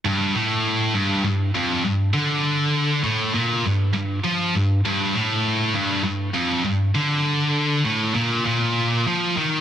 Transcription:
\new Staff \with { instrumentName = "Distorted electric guitar" } { \clef bass \time 4/4 \key g \minor \tempo 4 = 100 g,8 a,4 g,8 g,8 f,8 g,8 d8~ | d4 a,8 bes,8 g,8 g,8 f8 g,8 | g,8 a,4 g,8 g,8 f,8 g,8 d8~ | d4 a,8 bes,8 bes,4 f8 ees8 | }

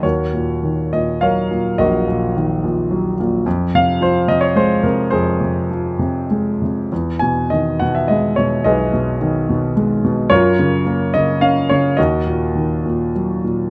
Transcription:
<<
  \new Staff \with { instrumentName = "Grand piano" } { \time 3/4 \key f \phrygian \tempo 4 = 106 << { des''4. ees''8 f''4 | ees''2~ ees''8 r8 | r8 f''8 c''8 ees''16 des''16 c''8 bes'8 | c''2 r4 |
r8 gis''8 dis''8 ges''16 e''16 dis''8 des''8 | dis''2 r4 | des''4 r8 ees''8 f''8 des''8 | ees''2 r4 | } \\ { <ges' bes'>4. r8 <bes' des''>4 | <ges' bes'>2~ <ges' bes'>8 r8 | r2. | aes'2 r4 |
r2. | <gis' b'>2 r4 | <f' bes'>4. r4. | <ges' bes'>2 r4 | } >> }
  \new Staff \with { instrumentName = "Grand piano" } { \clef bass \time 3/4 \key f \phrygian ees,8 bes,8 ees8 bes,8 ges8 bes,8 | bes,,8 bes,8 ees8 bes,8 ges8 bes,8 | f,8 c8 f8 c8 aes8 c8 | f,8 c8 f8 c8 aes8 c8 |
e,8 b,8 dis8 b,8 gis8 b,8 | b,,8 b,8 dis8 b,8 gis8 b,8 | ges,8 des8 bes8 des8 des'8 des8 | ees,8 bes,8 ees8 bes,8 ges8 bes,8 | }
>>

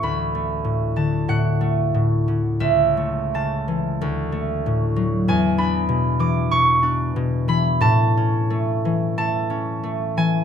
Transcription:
<<
  \new Staff \with { instrumentName = "Harp" } { \time 4/4 \key a \major \tempo 4 = 92 b''4. a''8 fis''2 | e''4 a''2. | gis''8 b''4 d'''8 cis'''4. b''8 | a''2 a''4. gis''8 | }
  \new Staff \with { instrumentName = "Harp" } { \clef bass \time 4/4 \key a \major <d, a>8 a8 a,8 d8 a,8 a8 a,8 d8 | cis,8 a8 cis8 e8 d,8 a8 a,8 fis8 | e,8 d'8 b,8 e8 b,8 d'8 b,8 e8 | a,8 cis'8 a8 e8 a8 cis'8 a8 e8 | }
>>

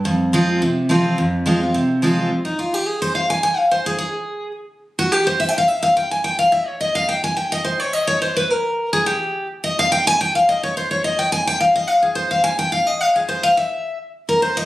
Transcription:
\new Staff \with { instrumentName = "Steel-string acoustic guitar" } { \time 4/4 \key f \minor \tempo 4 = 213 << { r4 <f aes c' f'>4 r4 <f aes c' f'>4 | r4 <f aes c' f'>8 <c' f'>8 r4 <f aes c' f'>4 | r8 ees'8 f'8 g'8 aes'8 c''8 f''8 aes''8 | aes''8 f''8 c''8 aes'8 aes'2 |
r4. ges'8 g'8 c''8 \tuplet 3/2 { e''8 g''8 f''8 } | e''8 f''8 g''8 aes''8 g''8 f''8 e''8 des''8 | ees''8 f''8 g''8 aes''8 g''8 ees''8 c''8 des''8 | ees''8 des''8 c''8 b'8 bes'4. aes'8 |
g'4. r8 ees''8 f''8 g''8 aes''8 | g''8 f''8 ees''8 des''8 c''8 des''8 ees''8 g''8 | aes''8 g''8 f''8 ees''8 f''8 aes'8 c''8 f''8 | aes''8 g''8 f''8 ees''8 f''8 aes'8 c''8 f''8 |
e''4. r4 bes'8 c''8 ees''8 | } \\ { f,2 c2 | f,2 c2 | r1 | r1 |
r1 | r1 | r1 | r1 |
r1 | r1 | r1 | r1 |
r1 | } >> }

